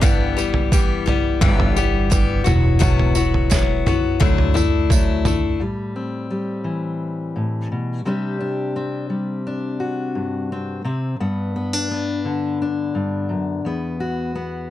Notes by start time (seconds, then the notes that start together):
0.01 G1 G2 D3 E3 G3 B3 G4, kick, floor tom, tambourine
0.37 E3 G3 B3 G4, tambourine
0.54 floor tom
0.72 E3 G3 B3 G4, kick, tambourine
1.06 E3 G3 B3 G4, floor tom
1.41 G1 G2 D3 E3 G3 B3 G4, kick, floor tom, mid tom, tambourine
1.60 floor tom
1.76 E3 G3 B3 G4, tambourine
2.10 E3 G3 B3 G4, kick, floor tom, tambourine
2.44 E1 F#3 B3 E4 F#4, floor tom, mid tom, tambourine
2.79 E2 B2 F#3 B3 E4 F#4, kick, floor tom, tambourine
2.99 floor tom
3.15 F#3 B3 E4 F#4, tambourine
3.34 floor tom
3.50 F#3 B3 E4 F#4, kick, snare, floor tom, tambourine
3.86 F#3 B3 E4 F#4, floor tom, mid tom, tambourine
4.20 D2 D3 F#3 A3 D4 E4, kick, floor tom, mid tom, tambourine
4.38 floor tom
4.54 A3 D4 E4, mid tom, tambourine
4.90 F#3 A3 D4 E4, kick, floor tom, tambourine
5.25 A3 D4 E4, floor tom, mid tom, tambourine
5.60 A2 G3
5.96 C4
6.30 G3
6.64 E3
7.36 A2
7.72 B2
8.05 C3 G3 C4 D4 G4
8.40 D4
8.76 C4
9.10 G3
9.47 D4
9.80 F#4
10.15 G2
10.52 C4
10.84 C3 C4
11.20 G2 B3
11.56 B3
11.73 D4
11.91 B3
12.25 D3
12.62 D4
12.95 G2
13.29 F#2
13.65 E2 B3
14.00 F#4
14.35 B3